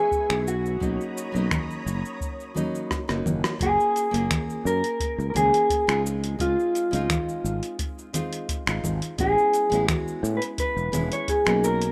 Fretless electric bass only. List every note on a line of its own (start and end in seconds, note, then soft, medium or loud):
0.30 0.77 B1 medium
0.81 0.97 B1 medium
1.35 1.49 B1 medium
1.86 2.02 F#1 medium
3.10 3.23 F#1 loud
3.26 3.41 F#1 medium
3.60 3.76 F#1 medium
4.14 4.28 F#1 medium
4.65 4.81 F#2 medium
5.18 5.32 C#2 medium
5.35 5.51 C#2 loud
5.88 6.36 C#2 medium
6.40 6.55 C#2 medium
6.93 7.07 C#2 medium
7.44 7.60 G#1 medium
8.67 8.81 G#1 loud
8.84 8.99 G#1 medium
9.19 9.34 A1 medium
9.72 9.86 A1 medium
10.23 10.39 A2 loud
10.77 10.91 E1 medium
10.93 11.09 E1 loud
11.47 11.92 B1 medium